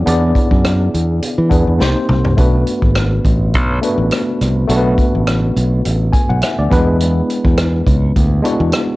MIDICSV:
0, 0, Header, 1, 4, 480
1, 0, Start_track
1, 0, Tempo, 576923
1, 58, Time_signature, 4, 2, 24, 8
1, 7456, End_track
2, 0, Start_track
2, 0, Title_t, "Tine electric piano"
2, 0, Program_c, 0, 4
2, 0, Control_c, 0, 64, 127
2, 0, Note_on_c, 0, 59, 73
2, 0, Note_on_c, 0, 62, 63
2, 0, Note_on_c, 0, 64, 62
2, 0, Note_on_c, 0, 68, 61
2, 0, Note_on_c, 0, 73, 64
2, 0, Note_on_c, 0, 74, 75
2, 47, Note_off_c, 0, 59, 0
2, 47, Note_on_c, 0, 59, 72
2, 50, Note_off_c, 0, 62, 0
2, 50, Note_on_c, 0, 62, 60
2, 60, Note_off_c, 0, 64, 0
2, 60, Note_on_c, 0, 64, 64
2, 62, Note_off_c, 0, 68, 0
2, 62, Note_on_c, 0, 68, 65
2, 69, Note_off_c, 0, 74, 0
2, 69, Note_on_c, 0, 74, 72
2, 956, Note_off_c, 0, 59, 0
2, 957, Note_off_c, 0, 62, 0
2, 962, Note_off_c, 0, 64, 0
2, 963, Note_off_c, 0, 68, 0
2, 966, Note_off_c, 0, 74, 0
2, 1242, Note_on_c, 0, 59, 68
2, 1246, Note_on_c, 0, 62, 67
2, 1258, Note_on_c, 0, 68, 67
2, 1259, Note_on_c, 0, 64, 58
2, 1266, Note_on_c, 0, 71, 72
2, 1482, Note_on_c, 0, 58, 63
2, 1486, Note_on_c, 0, 60, 66
2, 1492, Note_off_c, 0, 59, 0
2, 1494, Note_off_c, 0, 62, 0
2, 1496, Note_on_c, 0, 63, 64
2, 1500, Note_off_c, 0, 64, 0
2, 1500, Note_off_c, 0, 68, 0
2, 1504, Note_off_c, 0, 71, 0
2, 1504, Note_on_c, 0, 67, 61
2, 1507, Note_on_c, 0, 72, 83
2, 1511, Control_c, 0, 64, 0
2, 1515, Note_off_c, 0, 73, 0
2, 1678, Control_c, 0, 64, 127
2, 1943, Note_off_c, 0, 58, 0
2, 1945, Note_off_c, 0, 60, 0
2, 1950, Note_off_c, 0, 63, 0
2, 1954, Note_off_c, 0, 67, 0
2, 1955, Note_off_c, 0, 72, 0
2, 1971, Note_on_c, 0, 57, 69
2, 1982, Note_on_c, 0, 59, 59
2, 1983, Note_on_c, 0, 62, 63
2, 1992, Control_c, 0, 64, 0
2, 1992, Note_on_c, 0, 66, 65
2, 1998, Note_on_c, 0, 71, 75
2, 2129, Control_c, 0, 64, 127
2, 2878, Note_off_c, 0, 57, 0
2, 2884, Note_off_c, 0, 59, 0
2, 2885, Note_off_c, 0, 62, 0
2, 2889, Note_off_c, 0, 66, 0
2, 2892, Note_off_c, 0, 71, 0
2, 3176, Note_on_c, 0, 57, 75
2, 3185, Note_on_c, 0, 59, 68
2, 3186, Note_on_c, 0, 62, 63
2, 3194, Note_on_c, 0, 66, 66
2, 3201, Note_on_c, 0, 71, 72
2, 3856, Note_off_c, 0, 57, 0
2, 3860, Note_off_c, 0, 59, 0
2, 3861, Note_off_c, 0, 62, 0
2, 3864, Note_off_c, 0, 66, 0
2, 3868, Note_off_c, 0, 71, 0
2, 3890, Note_on_c, 0, 57, 75
2, 3895, Note_on_c, 0, 59, 58
2, 3900, Note_on_c, 0, 62, 57
2, 3908, Note_on_c, 0, 66, 64
2, 3913, Note_on_c, 0, 69, 55
2, 3967, Note_off_c, 0, 69, 0
2, 3968, Note_on_c, 0, 71, 71
2, 4798, Note_off_c, 0, 57, 0
2, 4800, Note_off_c, 0, 59, 0
2, 4803, Note_off_c, 0, 62, 0
2, 4806, Note_off_c, 0, 66, 0
2, 4837, Note_off_c, 0, 71, 0
2, 5096, Note_on_c, 0, 80, 52
2, 5223, Note_off_c, 0, 80, 0
2, 5236, Note_on_c, 0, 78, 61
2, 5339, Note_off_c, 0, 78, 0
2, 5340, Note_on_c, 0, 76, 59
2, 5464, Note_off_c, 0, 76, 0
2, 5479, Note_on_c, 0, 74, 59
2, 5574, Note_on_c, 0, 55, 63
2, 5578, Note_on_c, 0, 59, 73
2, 5586, Note_on_c, 0, 62, 67
2, 5590, Note_on_c, 0, 64, 73
2, 5593, Control_c, 0, 64, 0
2, 5597, Note_on_c, 0, 71, 91
2, 5628, Note_on_c, 0, 56, 81
2, 5637, Note_off_c, 0, 55, 0
2, 5704, Note_off_c, 0, 74, 0
2, 5764, Control_c, 0, 64, 127
2, 6480, Note_off_c, 0, 59, 0
2, 6485, Note_off_c, 0, 62, 0
2, 6487, Note_off_c, 0, 64, 0
2, 6490, Note_off_c, 0, 71, 0
2, 6505, Note_off_c, 0, 56, 0
2, 7008, Note_on_c, 0, 56, 73
2, 7017, Note_on_c, 0, 59, 67
2, 7020, Note_on_c, 0, 62, 68
2, 7029, Note_on_c, 0, 64, 71
2, 7036, Note_on_c, 0, 66, 78
2, 7456, Note_off_c, 0, 56, 0
2, 7456, Note_off_c, 0, 59, 0
2, 7456, Note_off_c, 0, 62, 0
2, 7456, Note_off_c, 0, 64, 0
2, 7456, Note_off_c, 0, 66, 0
2, 7456, End_track
3, 0, Start_track
3, 0, Title_t, "Fingered electric bass"
3, 0, Program_c, 1, 33
3, 58, Note_on_c, 1, 40, 93
3, 262, Note_off_c, 1, 40, 0
3, 428, Note_on_c, 1, 42, 70
3, 726, Note_off_c, 1, 42, 0
3, 783, Note_on_c, 1, 40, 79
3, 985, Note_off_c, 1, 40, 0
3, 1148, Note_on_c, 1, 52, 73
3, 1243, Note_off_c, 1, 52, 0
3, 1261, Note_on_c, 1, 40, 66
3, 1371, Note_off_c, 1, 40, 0
3, 1392, Note_on_c, 1, 40, 76
3, 1485, Note_off_c, 1, 40, 0
3, 1500, Note_on_c, 1, 36, 88
3, 1610, Note_off_c, 1, 36, 0
3, 1742, Note_on_c, 1, 36, 64
3, 1945, Note_off_c, 1, 36, 0
3, 1984, Note_on_c, 1, 35, 91
3, 2187, Note_off_c, 1, 35, 0
3, 2353, Note_on_c, 1, 32, 66
3, 2650, Note_off_c, 1, 32, 0
3, 2706, Note_on_c, 1, 33, 88
3, 2951, Note_off_c, 1, 33, 0
3, 2951, Note_on_c, 1, 35, 84
3, 3151, Note_off_c, 1, 35, 0
3, 3310, Note_on_c, 1, 33, 75
3, 3405, Note_off_c, 1, 33, 0
3, 3672, Note_on_c, 1, 36, 66
3, 3872, Note_off_c, 1, 36, 0
3, 3903, Note_on_c, 1, 35, 97
3, 4106, Note_off_c, 1, 35, 0
3, 4284, Note_on_c, 1, 33, 72
3, 4576, Note_off_c, 1, 33, 0
3, 4630, Note_on_c, 1, 35, 93
3, 4830, Note_off_c, 1, 35, 0
3, 4873, Note_on_c, 1, 33, 73
3, 5072, Note_off_c, 1, 33, 0
3, 5240, Note_on_c, 1, 35, 82
3, 5331, Note_off_c, 1, 35, 0
3, 5478, Note_on_c, 1, 38, 67
3, 5569, Note_off_c, 1, 38, 0
3, 5589, Note_on_c, 1, 40, 81
3, 5993, Note_off_c, 1, 40, 0
3, 6199, Note_on_c, 1, 40, 68
3, 6493, Note_off_c, 1, 40, 0
3, 6544, Note_on_c, 1, 37, 85
3, 6746, Note_off_c, 1, 37, 0
3, 6793, Note_on_c, 1, 38, 85
3, 6991, Note_off_c, 1, 38, 0
3, 7155, Note_on_c, 1, 40, 88
3, 7247, Note_off_c, 1, 40, 0
3, 7456, End_track
4, 0, Start_track
4, 0, Title_t, "Drums"
4, 57, Note_on_c, 9, 42, 85
4, 140, Note_off_c, 9, 42, 0
4, 293, Note_on_c, 9, 36, 72
4, 299, Note_on_c, 9, 42, 53
4, 377, Note_off_c, 9, 36, 0
4, 382, Note_off_c, 9, 42, 0
4, 425, Note_on_c, 9, 36, 75
4, 508, Note_off_c, 9, 36, 0
4, 535, Note_on_c, 9, 42, 66
4, 538, Note_on_c, 9, 37, 91
4, 618, Note_off_c, 9, 42, 0
4, 622, Note_off_c, 9, 37, 0
4, 783, Note_on_c, 9, 42, 55
4, 866, Note_off_c, 9, 42, 0
4, 1017, Note_on_c, 9, 42, 84
4, 1101, Note_off_c, 9, 42, 0
4, 1256, Note_on_c, 9, 36, 79
4, 1259, Note_on_c, 9, 42, 66
4, 1339, Note_off_c, 9, 36, 0
4, 1343, Note_off_c, 9, 42, 0
4, 1503, Note_on_c, 9, 38, 47
4, 1586, Note_off_c, 9, 38, 0
4, 1738, Note_on_c, 9, 45, 65
4, 1821, Note_off_c, 9, 45, 0
4, 1869, Note_on_c, 9, 43, 69
4, 1952, Note_off_c, 9, 43, 0
4, 1978, Note_on_c, 9, 42, 85
4, 1979, Note_on_c, 9, 36, 101
4, 2061, Note_off_c, 9, 42, 0
4, 2063, Note_off_c, 9, 36, 0
4, 2220, Note_on_c, 9, 42, 54
4, 2303, Note_off_c, 9, 42, 0
4, 2349, Note_on_c, 9, 36, 72
4, 2432, Note_off_c, 9, 36, 0
4, 2455, Note_on_c, 9, 42, 64
4, 2459, Note_on_c, 9, 37, 94
4, 2539, Note_off_c, 9, 42, 0
4, 2542, Note_off_c, 9, 37, 0
4, 2702, Note_on_c, 9, 36, 80
4, 2705, Note_on_c, 9, 42, 60
4, 2785, Note_off_c, 9, 36, 0
4, 2788, Note_off_c, 9, 42, 0
4, 2944, Note_on_c, 9, 42, 89
4, 2948, Note_on_c, 9, 36, 84
4, 3027, Note_off_c, 9, 42, 0
4, 3031, Note_off_c, 9, 36, 0
4, 3186, Note_on_c, 9, 42, 67
4, 3270, Note_off_c, 9, 42, 0
4, 3420, Note_on_c, 9, 42, 80
4, 3432, Note_on_c, 9, 37, 87
4, 3504, Note_off_c, 9, 42, 0
4, 3515, Note_off_c, 9, 37, 0
4, 3669, Note_on_c, 9, 42, 55
4, 3671, Note_on_c, 9, 37, 30
4, 3752, Note_off_c, 9, 42, 0
4, 3754, Note_off_c, 9, 37, 0
4, 3906, Note_on_c, 9, 42, 89
4, 3989, Note_off_c, 9, 42, 0
4, 4143, Note_on_c, 9, 36, 75
4, 4146, Note_on_c, 9, 42, 49
4, 4226, Note_off_c, 9, 36, 0
4, 4229, Note_off_c, 9, 42, 0
4, 4383, Note_on_c, 9, 42, 69
4, 4386, Note_on_c, 9, 37, 88
4, 4466, Note_off_c, 9, 42, 0
4, 4470, Note_off_c, 9, 37, 0
4, 4631, Note_on_c, 9, 42, 58
4, 4714, Note_off_c, 9, 42, 0
4, 4867, Note_on_c, 9, 42, 90
4, 4950, Note_off_c, 9, 42, 0
4, 5103, Note_on_c, 9, 36, 84
4, 5106, Note_on_c, 9, 42, 71
4, 5186, Note_off_c, 9, 36, 0
4, 5189, Note_off_c, 9, 42, 0
4, 5337, Note_on_c, 9, 42, 70
4, 5349, Note_on_c, 9, 37, 89
4, 5420, Note_off_c, 9, 42, 0
4, 5432, Note_off_c, 9, 37, 0
4, 5585, Note_on_c, 9, 36, 90
4, 5592, Note_on_c, 9, 42, 62
4, 5593, Note_on_c, 9, 37, 34
4, 5669, Note_off_c, 9, 36, 0
4, 5675, Note_off_c, 9, 42, 0
4, 5677, Note_off_c, 9, 37, 0
4, 5826, Note_on_c, 9, 42, 82
4, 5909, Note_off_c, 9, 42, 0
4, 6070, Note_on_c, 9, 42, 55
4, 6153, Note_off_c, 9, 42, 0
4, 6195, Note_on_c, 9, 36, 73
4, 6278, Note_off_c, 9, 36, 0
4, 6300, Note_on_c, 9, 42, 71
4, 6303, Note_on_c, 9, 37, 95
4, 6383, Note_off_c, 9, 42, 0
4, 6387, Note_off_c, 9, 37, 0
4, 6543, Note_on_c, 9, 36, 74
4, 6548, Note_on_c, 9, 42, 64
4, 6626, Note_off_c, 9, 36, 0
4, 6631, Note_off_c, 9, 42, 0
4, 6788, Note_on_c, 9, 42, 84
4, 6789, Note_on_c, 9, 36, 83
4, 6872, Note_off_c, 9, 36, 0
4, 6872, Note_off_c, 9, 42, 0
4, 7029, Note_on_c, 9, 42, 71
4, 7112, Note_off_c, 9, 42, 0
4, 7255, Note_on_c, 9, 42, 79
4, 7267, Note_on_c, 9, 37, 96
4, 7339, Note_off_c, 9, 42, 0
4, 7350, Note_off_c, 9, 37, 0
4, 7456, End_track
0, 0, End_of_file